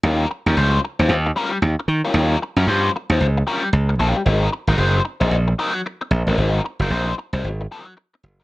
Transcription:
X:1
M:4/4
L:1/16
Q:"Swing 16ths" 1/4=113
K:Ab
V:1 name="Overdriven electric guitar"
[G,DFB]2 z [G,DFB] [G,DFc]2 z [G,DFc] z2 [G,DFB]2 z3 [G,DFB] | [G,DFB]2 z [G,DFB] [G,DFc]2 z [G,DFc] z2 [G,DFB]2 z2 [G,DFB]2 | [_G,CEB]2 z [G,CEB] [G,CEc]2 z [G,CEc] z2 [G,CEB]2 z3 [G,CEB] | [_G,CEB]2 z [G,CEB] [G,CEc]2 z [G,CEc] z2 [G,CEB]2 z3 [CEB] |]
V:2 name="Slap bass" clef=bass
E,,2 z E,, D,,2 z E,, E,,2 z2 E,, z E, z | E,,2 z _G,, =G,,2 z E,, D,,2 z2 D,,2 B,,, z | A,,,2 z A,,, _G,,,2 z B,,, B,,,2 z4 B,,, =A,,, | A,,,2 z _G,,, B,,,2 z C,, A,,,2 z4 G,,,2 |]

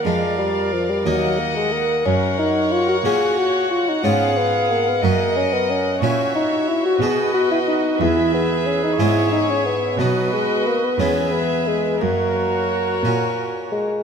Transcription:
X:1
M:6/8
L:1/16
Q:3/8=60
K:Gb
V:1 name="Violin section"
f6 g6 | g12- | g12 | [K:B] e6 d6 |
e6 e6 | d6 e6 | c8- c2 z2 |]
V:2 name="Violin section"
=d6 e6 | d12 | f6 e6 | [K:B] c6 B6 |
B6 c6 | B6 B6 | A8- A2 z2 |]
V:3 name="Viola section"
B12 | B6 G6 | A6 B6 | [K:B] F6 F6 |
G12 | F6 G6 | F8- F2 z2 |]
V:4 name="Bassoon"
A,2 =G,2 F, G, _G,2 B, A, B,2 | D2 E2 F G A2 G2 F E | D2 C2 B, C B,2 D C D2 | [K:B] C2 D2 E F G2 F E D2 |
E2 B,2 C D E2 D C B,2 | F,2 G,2 A, B, C2 B,2 G,2 | A,6 z4 G,2 |]
V:5 name="Harpsichord"
[F,,=D]6 [E,,B,E]6 | G,,6 [B,,B,D]6 | [A,,CF]6 [G,,D]6 | [K:B] [A,,CE]6 [B,,B,F]6 |
E,,6 [G,,G,B,E]6 | [B,,B,D]6 [E,,G,B,E]6 | F,,6 [A,,C]6 |]
V:6 name="Cello section" clef=bass
F,,6 E,,6 | G,,6 B,,6 | A,,6 G,,6 | [K:B] A,,6 B,,6 |
E,,6 G,,6 | B,,6 E,,6 | F,,6 A,,6 |]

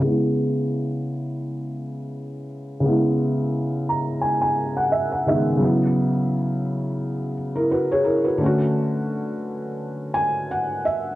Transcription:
X:1
M:4/4
L:1/16
Q:"Swing 16ths" 1/4=86
K:C#m
V:1 name="Felt piano"
z16 | z6 ^a2 g g2 f e f e2 | z8 z3 [E^A] [FB] [Gc] [EA] [FB]- | [FB] z8 z g2 f2 e2 |]
V:2 name="Felt piano" clef=bass
[C,G,B,E]16 | [C,G,B,E]12- [C,G,B,E]2 [C,D,G,B,]2 | [C,F,B,E]12 z4 | [=D,A,CF]16 |]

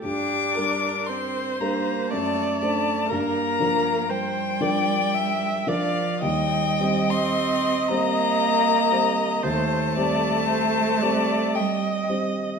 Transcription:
X:1
M:3/4
L:1/16
Q:1/4=57
K:Gdor
V:1 name="Violin"
d'4 c'2 b2 a2 a2 | b4 g6 f2 | [K:Cdor] g3 c'3 b6 | a8 g2 z2 |]
V:2 name="Viola"
G2 B2 c4 d4 | B4 c2 d2 e2 d2 | [K:Cdor] e12 | c2 d2 c2 d2 e4 |]
V:3 name="Grand piano"
G,,2 [G,DB]4 [G,DB]2 ^F,,2 [A,Dc]2 | G,,2 [F,DB]4 [F,DB]4 [F,DB]2 | [K:Cdor] E,,2 [G,Cc]4 [G,Cc]4 [G,Cc]2 | E,,2 [G,Cc]4 [G,Cc]4 [G,Cc]2 |]
V:4 name="Cello"
D4 C2 B,2 A,2 A,2 | B,4 G,6 F,2 | [K:Cdor] G,3 C3 B,6 | A,8 G,2 z2 |]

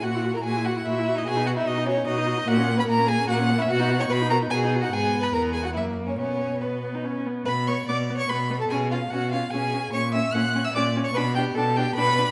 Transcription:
X:1
M:3/4
L:1/16
Q:1/4=147
K:B
V:1 name="Violin"
f3 a g2 f2 e3 d | g2 f e d2 c2 d4 | f3 b a2 g2 f3 e | f3 c' b2 a2 g3 f |
g3 b a2 g f e3 c | c4 B6 z2 | [K:Bm] b2 c'2 d'3 c' b3 a | ^g2 ^e2 f2 e2 g4 |
c'2 e'2 f'3 e' d'3 c' | b2 g2 a2 g2 b4 |]
V:2 name="Violin"
F3 A G2 F2 E3 D | G2 F E D2 C2 D4 | F3 B A2 G2 F3 E | F3 c B2 A2 G3 F |
G3 B A2 G F E3 C | C4 B,6 z2 | [K:Bm] B2 c2 d3 c B3 A | ^G2 ^E2 F2 E2 G4 |
c2 e2 f3 e d3 c | B2 G2 A2 G2 B4 |]
V:3 name="Viola"
F E F E F E F E F E F E | F D F D F D F D F D F D | A, C A, C A, C A, C A, C A, C | F D F D F D F D F D F D |
B,4 B,4 A,4 | B,4 B,3 D C2 B,2 | [K:Bm] B,2 B,2 B,2 B,2 B,2 B,2 | C2 C2 C2 C2 C2 C2 |
C2 C2 C2 C2 C2 C2 | D2 D2 D2 D2 D2 D2 |]
V:4 name="Cello" clef=bass
A,,4 A,,4 A,,4 | B,,4 B,,4 B,,4 | A,,4 A,,4 A,,4 | B,,4 B,,4 B,,4 |
G,,4 E,,4 F,,4 | B,,8- B,,2 z2 | [K:Bm] B,,4 B,,4 B,,4 | B,,4 B,,4 B,,4 |
^A,,4 A,,4 A,,4 | B,,4 B,,4 B,,4 |]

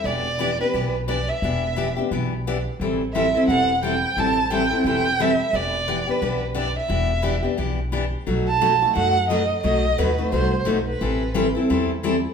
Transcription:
X:1
M:4/4
L:1/16
Q:"Swing" 1/4=175
K:Em
V:1 name="Violin"
d6 B4 z2 d2 e2- | e6 z8 z2 | z4 e4 f4 g4 | a4 g4 g4 e4 |
d6 B4 z2 d2 e2- | e6 z8 z2 | z2 a6 f4 ^d4 | ^d4 B4 c4 z2 B2- |
B6 z8 z2 |]
V:2 name="Steel-string acoustic guitar"
[E,B,DG]2 z2 [E,B,DG] z [B,DG]2 [E,B,DG]2 z2 [E,B,DG] z3 | [E,B,DG]2 z2 [E,B,DG] z [B,DG]2 [E,B,DG]2 z2 [E,B,DG] z3 | [E,G,CEA]2 z2 [E,G,CEA] z [CEA]2 [E,G,CEA]2 z2 [E,G,CEA] z3 | [E,G,CEA]2 z2 [E,G,CEA] z [CEA]2 [E,G,CEA]2 z2 [E,G,CEA] z3 |
[E,B,DG]2 z2 [E,B,DG] z [B,DG]2 [E,B,DG]2 z2 [E,B,DG] z3 | [E,B,DG]2 z2 [E,B,DG] z [B,DG]2 [E,B,DG]2 z2 [E,B,DG] z3 | [B,,F,A,^DF]2 z2 [B,,F,A,DF] z [A,DF]2 [B,,F,A,DF]2 z2 [B,,F,A,DF] z3 | [B,,F,A,^DF]2 z2 [B,,F,A,DF] z [A,DF]2 [B,,F,A,DF]2 z2 [B,,F,A,DF] z3 |
[E,G,CEA]2 z2 [E,G,CEA] z [CEA]2 [E,G,CEA]2 z2 [E,G,CEA] z3 |]
V:3 name="Upright bass" clef=bass
E,,,8 B,,,8 | E,,,8 B,,,8 | A,,,8 E,,,8 | A,,,8 E,,,8 |
E,,,8 B,,,8 | E,,,8 B,,,8 | B,,,8 F,,8 | B,,,4 ^D,,4 C,,4 B,,,4 |
A,,,8 E,,8 |]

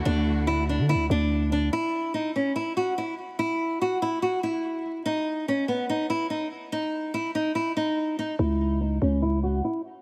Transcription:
X:1
M:4/4
L:1/16
Q:1/4=144
K:C#m
V:1 name="Nylon-string guitar"
=D4 E2 D2 E2 D4 D2 | E4 D2 C2 E2 F2 E2 z2 | E4 F2 E2 F2 E6 | D4 C2 B,2 D2 E2 D2 z2 |
D4 E2 D2 E2 D4 D2 | E4 D2 C2 E2 F2 E2 z2 |]
V:2 name="String section"
[=D,A,EF]16 | z16 | z16 | z16 |
z16 | z16 |]
V:3 name="808-style bass" clef=bass
=D,,6- D,, =D,3/2 D,,3/2 D,,6 | z16 | z16 | z16 |
z16 | C,,6 C,,6 z4 |]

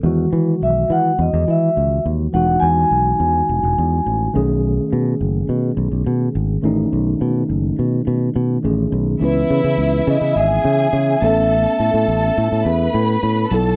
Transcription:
X:1
M:4/4
L:1/16
Q:1/4=104
K:E
V:1 name="Vibraphone"
z4 e2 f2 d2 e4 z2 | f2 g12 z2 | z16 | z16 |
B6 d2 e6 e2- | e8- e2 z6 |]
V:2 name="String section"
z16 | z16 | z16 | z16 |
[Ee]8 [Gg]6 [Aa]2- | [Aa]8 [Bb]6 [Aa]2 |]
V:3 name="Tine electric piano"
[D,E,G,F]16 | [E,G,DF]12- [E,G,DF]2 [D,A,CG]2- | [D,A,CG]12- [D,A,CG]2 [D,A,CD]2- | [D,A,CD]12 [D,A,CG]4 |
[E,B,CE]12- [E,B,CE]2 [A,B,CA]2- | [A,B,CA]12- [A,B,CA]2 [F,B,EA]2 |]
V:4 name="Fingered electric bass" clef=bass
E,,2 E,2 B,,,2 E,2 E,, E,, E,2 C,,2 D,,2 | E,,,2 E,,2 B,,,2 E,,2 E,,, E,,, E,,2 A,,,2 B,,,2- | B,,,2 B,,2 F,,,2 B,,2 B,,, B,,, B,,2 G,,,2 A,,,2 | B,,,2 B,,2 F,,,2 B,,2 B,,2 B,,2 A,,,2 B,,,2 |
C,,2 C, C, C,,2 C, C, G,,,2 C,2 C,2 A,,,2- | A,,,2 A,, A,, A,,,2 A,, A,, E,,2 A,,2 A,,2 B,,,2 |]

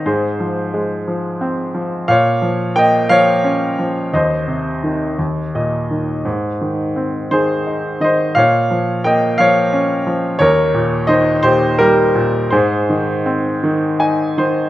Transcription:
X:1
M:6/8
L:1/8
Q:3/8=57
K:Ab
V:1 name="Grand piano"
[Ac]2 z4 | [df]2 [eg] [df]3 | [ce]2 z2 e2 | z3 [Ac]2 [ce] |
[df]2 [eg] [df]2 z | [Bd]2 [ce] [Gc] [GB]2 | [Ac]4 a c |]
V:2 name="Grand piano" clef=bass
A,, F, A, F, C F, | B,, F, B, F, D F, | E,, C, E, E,, B,, E, | A,, E, C E, E E, |
B,, F, B, F, D F, | E,, B,, E, B,, G, B,, | A,, E, C E, E E, |]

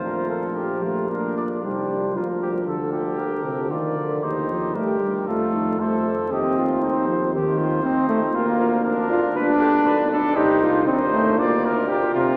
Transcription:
X:1
M:4/4
L:1/8
Q:1/4=117
K:Bb
V:1 name="Trumpet"
F B3 B d c2 | B2 A2 B2 d2 | c2 B2 A2 c2 | e z c2 c4 |
B2 B2 =B2 d2 | c2 c2 d B B2 |]
V:2 name="Cornet"
B A G F D2 D2 | F G A G3 F2 | E2 G2 F2 A2 | G F E z G F E2 |
F2 D2 =B G B A | G F E2 F2 G F |]
V:3 name="French horn"
D2 G2 F2 E D | F4 G A B2 | G4 F E F A | G F E z G F E2 |
F F D D F A3 | G F E2 F2 F2 |]
V:4 name="Trombone"
F,3 A, B,2 G,2 | F,2 D,3 C, E, D, | E, F, A, G, A,2 A, z | C3 F, E,2 C A, |
B,3 F D3 D | E2 C A, B,2 z C, |]
V:5 name="Bass trombone" clef=bass
B,,,6 C,,2 | D,,8 | E,,2 G,,2 F,,4 | E,,6- E,, z |
D,,4 G,,,2 =B,,,2 | C,,2 E,,2 D,,4 |]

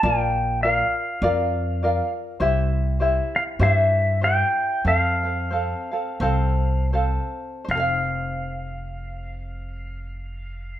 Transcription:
X:1
M:4/4
L:1/8
Q:"Swing" 1/4=93
K:F
V:1 name="Pedal steel guitar"
g2 f4- f z | z3 f e2 g2 | f6 z2 | f8 |]
V:2 name="Ukulele"
[FBdf]2 [FBdf]2 [FBdf]2 [FBdf]2 | [EGce]2 [EGce]2 [EGce]2 [EGce]2 | [CAcf] [CAf] [CAcf] [CAf] [CAcf]2 [CAcf]2 | [CAcf]8 |]
V:3 name="Upright bass" clef=bass
B,,,4 F,,4 | C,,4 G,,4 | F,,4 C,,4 | F,,,8 |]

